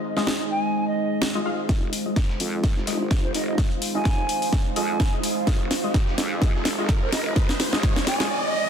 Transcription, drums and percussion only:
0.17 snare
0.27 snare
1.22 snare
1.69 kick, snare, closed hi-hat
1.93 closed hi-hat, open hi-hat
2.16 kick, snare, closed hi-hat
2.29 snare
2.40 closed hi-hat, open hi-hat
2.64 kick, snare, closed hi-hat
2.77 snare
2.87 snare, closed hi-hat, open hi-hat
3.11 kick, snare, closed hi-hat
3.34 snare, closed hi-hat, open hi-hat
3.58 kick, snare, closed hi-hat
3.71 closed hi-hat
3.82 open hi-hat
4.05 kick, snare, closed hi-hat
4.29 closed hi-hat, open hi-hat
4.42 open hi-hat
4.53 kick, snare, closed hi-hat
4.76 closed hi-hat, open hi-hat
5.00 kick, snare, closed hi-hat
5.24 closed hi-hat, open hi-hat
5.47 kick, snare, closed hi-hat
5.71 snare, closed hi-hat, open hi-hat
5.94 kick, snare, closed hi-hat
6.07 snare
6.18 snare, closed hi-hat, open hi-hat
6.42 kick, snare, closed hi-hat
6.55 snare
6.65 snare, closed hi-hat, open hi-hat
6.89 kick, snare, closed hi-hat
7.12 snare, closed hi-hat, open hi-hat
7.36 kick, snare, closed hi-hat
7.49 snare, closed hi-hat
7.60 snare, open hi-hat
7.73 snare
7.83 kick, snare, closed hi-hat
7.96 snare
8.07 snare, closed hi-hat, open hi-hat
8.20 snare, open hi-hat

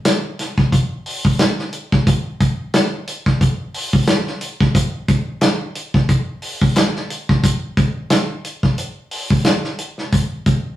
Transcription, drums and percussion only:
0.05 snare, closed hi-hat
0.39 snare, closed hi-hat
0.58 kick, snare
0.72 kick, closed hi-hat
1.06 open hi-hat
1.25 kick
1.39 snare, closed hi-hat
1.59 snare
1.73 closed hi-hat
1.92 kick, snare
2.07 kick, closed hi-hat
2.40 kick, closed hi-hat
2.74 snare, closed hi-hat
3.07 closed hi-hat
3.26 kick, snare
3.41 kick, closed hi-hat
3.74 open hi-hat
3.93 kick
4.07 snare, closed hi-hat
4.27 snare
4.41 closed hi-hat
4.61 kick, snare
4.75 kick, closed hi-hat
5.08 kick, closed hi-hat
5.41 snare, clap, closed hi-hat
5.75 closed hi-hat
5.94 kick, snare
6.09 kick, closed hi-hat
6.42 open hi-hat
6.62 kick
6.76 snare, clap, closed hi-hat
6.96 snare
7.10 closed hi-hat
7.29 kick, snare
7.43 kick, closed hi-hat
7.77 kick, closed hi-hat
8.10 snare, clap, closed hi-hat
8.45 closed hi-hat
8.63 kick, snare
8.78 closed hi-hat
9.11 open hi-hat
9.30 kick
9.44 snare, clap, closed hi-hat
9.64 snare
9.79 closed hi-hat
9.98 snare
10.13 kick, closed hi-hat
10.46 kick, closed hi-hat

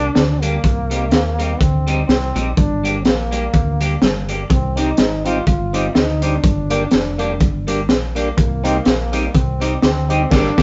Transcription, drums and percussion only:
0.16 snare, closed hi-hat
0.42 closed hi-hat
0.64 kick, closed hi-hat
0.91 closed hi-hat
1.11 snare, closed hi-hat
1.39 closed hi-hat
1.60 kick, closed hi-hat
1.88 closed hi-hat
2.09 snare, closed hi-hat
2.36 closed hi-hat
2.57 kick, closed hi-hat
2.85 closed hi-hat
3.05 snare, closed hi-hat
3.32 closed hi-hat
3.53 kick, closed hi-hat
3.81 closed hi-hat
4.02 snare, closed hi-hat
4.29 closed hi-hat
4.50 kick, closed hi-hat
4.77 closed hi-hat
4.97 snare, closed hi-hat
5.25 closed hi-hat
5.47 kick, closed hi-hat
5.74 closed hi-hat
5.95 snare, closed hi-hat
6.22 closed hi-hat
6.44 kick, closed hi-hat
6.70 closed hi-hat
6.91 snare, closed hi-hat
7.19 closed hi-hat
7.40 kick, closed hi-hat
7.68 closed hi-hat
7.89 snare, closed hi-hat
8.16 closed hi-hat
8.38 kick, closed hi-hat
8.65 closed hi-hat
8.85 snare, closed hi-hat
9.13 closed hi-hat
9.34 kick, closed hi-hat
9.61 closed hi-hat
9.82 snare, closed hi-hat
10.10 closed hi-hat
10.31 kick, snare, crash
10.58 kick, snare

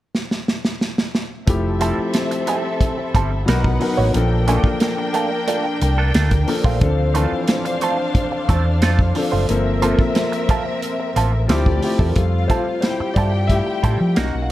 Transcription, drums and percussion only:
0.15 snare
0.31 snare
0.48 snare
0.65 snare
0.81 snare
0.98 snare
1.15 snare
1.47 kick, closed hi-hat
1.81 closed hi-hat
2.14 snare, closed hi-hat
2.31 closed hi-hat
2.47 closed hi-hat
2.81 kick, closed hi-hat
3.15 kick, closed hi-hat
3.48 snare, closed hi-hat
3.64 kick
3.81 open hi-hat
4.14 closed hi-hat
4.48 closed hi-hat
4.64 kick
4.80 snare, closed hi-hat
5.14 closed hi-hat
5.48 closed hi-hat
5.81 closed hi-hat
6.14 snare, closed hi-hat
6.31 kick, closed hi-hat
6.48 open hi-hat
6.64 kick
6.81 kick, closed hi-hat
7.15 closed hi-hat
7.48 snare, closed hi-hat
7.66 closed hi-hat
7.81 closed hi-hat
8.15 kick, closed hi-hat
8.49 kick, closed hi-hat
8.82 snare, closed hi-hat
8.99 kick
9.15 open hi-hat
9.49 closed hi-hat
9.82 closed hi-hat
9.99 kick
10.15 snare, closed hi-hat
10.33 closed hi-hat
10.49 kick, closed hi-hat
10.82 closed hi-hat
11.16 closed hi-hat
11.49 snare, closed hi-hat
11.66 kick
11.82 open hi-hat
11.99 kick
12.16 kick, closed hi-hat
12.50 kick, closed hi-hat
12.82 snare, closed hi-hat
13.16 kick, closed hi-hat
13.50 kick, closed hi-hat
13.84 kick, closed hi-hat
14.16 snare, closed hi-hat

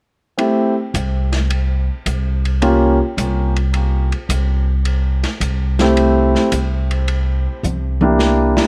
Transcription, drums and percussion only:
0.39 ride
0.94 hi-hat pedal, ride
1.32 snare, ride
1.50 ride
2.06 hi-hat pedal, ride
2.45 ride
2.62 ride
3.18 hi-hat pedal, ride
3.56 ride
3.74 ride
4.12 ride
4.30 hi-hat pedal, ride
4.85 ride
5.23 snare, ride
5.41 hi-hat pedal, ride
5.79 snare, ride
5.97 ride
6.35 snare
6.52 hi-hat pedal, ride
6.91 ride
7.08 ride
7.64 hi-hat pedal, mid tom
8.01 mid tom
8.19 snare
8.57 snare

